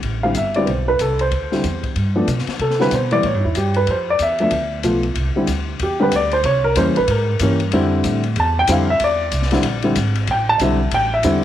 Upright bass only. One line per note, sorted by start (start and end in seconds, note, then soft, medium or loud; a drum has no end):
0.03 0.34 A1 medium
0.35 0.66 G1 medium
0.67 0.98 B1 medium
0.99 1.30 C2 medium
1.31 1.62 D2 medium
1.64 1.95 E2 medium
1.95 2.27 G2 medium
2.27 2.46 B2 medium
2.47 muted upright bass stroke soft
2.59 2.91 C3 medium
2.91 3.23 B2 medium
3.23 3.34 A2 medium
3.34 3.44 G2 soft
3.44 3.55 E2 medium
3.55 3.86 G2 medium
3.87 4.19 F2 medium
4.19 4.51 E2 medium
4.51 4.83 D2 medium
4.83 5.15 B1 medium
5.16 5.34 C2 medium
5.36 muted upright bass stroke soft
5.48 5.79 D2 medium
5.80 6.11 E2 medium
6.12 6.43 D2 medium
6.44 6.75 C2 medium
6.76 6.88 E2 medium
6.87 6.97 C2 medium
6.97 7.07 A#1 medium
7.08 7.39 G#2 medium
7.40 7.71 G2 medium
7.72 8.03 F2 medium
8.04 8.35 A2 medium
8.36 8.67 E2 medium
8.68 8.99 F2 medium
9.00 9.31 E2 medium
9.32 9.63 C2 medium
9.64 9.95 A#1 medium
9.96 10.27 G#1 medium
10.28 10.59 A1 medium
10.60 10.91 B1 medium
10.92 11.23 A1 medium
11.24 11.44 E2 medium